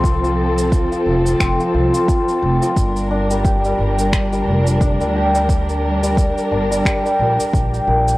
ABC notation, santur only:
X:1
M:4/4
L:1/16
Q:"Swing 16ths" 1/4=88
K:Gm
V:1 name="Santur" clef=bass
F F,4 F, z2 C F, F F,4 F, | z2 D G, G G,4 G, z2 D G, G G,- | G,3 G, z2 D G, G G, z3 g B z |]